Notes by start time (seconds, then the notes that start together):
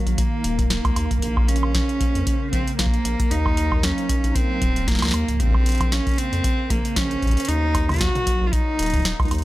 Already playing: D#3 F#3 A#3 D#4 A#4 F5
0.07 A#1, closed hi-hat
0.18 A#3, kick, closed hi-hat
0.44 D#1, closed hi-hat
0.59 kick, closed hi-hat
0.70 A#3, snare, closed hi-hat
0.85 C#2, kick, closed hi-hat, high woodblock
0.96 D#2, closed hi-hat, high woodblock
1.11 kick, closed hi-hat
1.19 A#1 C#3 A#3, kick, closed hi-hat
1.27 kick
1.37 kick, high woodblock
1.47 C#4 C5, closed hi-hat
1.56 closed hi-hat
1.63 high woodblock
1.75 kick, snare, closed hi-hat
1.89 closed hi-hat
2.01 kick, closed hi-hat
2.15 F2, closed hi-hat
2.27 kick, closed hi-hat
2.53 A#1 C4, kick, closed hi-hat
2.67 closed hi-hat
2.79 A#1 A#3, snare, closed hi-hat
2.86 kick
2.94 closed hi-hat
3.05 A#1, closed hi-hat
3.20 kick, closed hi-hat
3.31 D#2 F#3 D#4, closed hi-hat
3.46 D#4, kick, high woodblock
3.57 closed hi-hat
3.72 kick, high woodblock
3.83 C#4, snare, closed hi-hat
3.98 closed hi-hat
4.09 kick, closed hi-hat
4.24 A#1, closed hi-hat
4.35 C4, kick, closed hi-hat
4.62 D#1, kick, closed hi-hat
4.76 closed hi-hat
4.88 A#3, kick, snare, closed hi-hat
4.91 snare
4.95 snare
4.99 C#2, snare
5.02 snare, closed hi-hat, high woodblock
5.05 snare
5.08 snare
5.11 D#2, snare, closed hi-hat, high woodblock
5.28 kick, closed hi-hat
5.31 kick
5.34 kick
5.37 A#1 C#3 C4, kick
5.40 kick, closed hi-hat
5.44 kick
5.47 kick
5.51 kick
5.54 kick, high woodblock
5.66 closed hi-hat
5.69 closed hi-hat
5.72 closed hi-hat
5.75 closed hi-hat
5.78 kick, closed hi-hat
5.81 closed hi-hat, high woodblock
5.92 C#4, snare, closed hi-hat
6.07 kick, closed hi-hat
6.09 closed hi-hat
6.11 closed hi-hat
6.14 closed hi-hat
6.16 C4, closed hi-hat
6.18 closed hi-hat
6.33 F2 C5, closed hi-hat
6.44 kick, closed hi-hat
6.70 A#1 A#3, kick, closed hi-hat
6.85 closed hi-hat
6.96 A#1 C#4, kick, snare, closed hi-hat
7.11 closed hi-hat
7.22 A#1, kick, closed hi-hat
7.26 kick, closed hi-hat
7.30 kick, closed hi-hat
7.33 kick, closed hi-hat
7.40 closed hi-hat
7.45 D#4, closed hi-hat
7.49 D#2 F#3, closed hi-hat
7.75 kick, closed hi-hat, high woodblock
7.89 closed hi-hat, mid tom, high woodblock
7.92 closed hi-hat, mid tom
7.94 closed hi-hat
7.96 closed hi-hat, mid tom
7.98 F#4, snare, closed hi-hat
8.01 kick, closed hi-hat, mid tom
8.06 mid tom
8.09 mid tom
8.15 closed hi-hat, mid tom
8.23 D#4
8.27 kick, closed hi-hat
8.41 A#1
8.47 F4
8.53 D#4, kick, closed hi-hat
8.79 D#1, closed hi-hat
8.83 closed hi-hat
8.86 closed hi-hat
8.90 kick, closed hi-hat
8.94 kick, closed hi-hat
8.96 closed hi-hat
8.99 kick, closed hi-hat
9.02 kick, snare, closed hi-hat
9.05 closed hi-hat
9.20 C#2, kick, closed hi-hat, high woodblock
9.23 closed hi-hat
9.25 closed hi-hat
9.28 D#2, closed hi-hat
9.31 closed hi-hat, high woodblock
9.35 closed hi-hat
9.38 closed hi-hat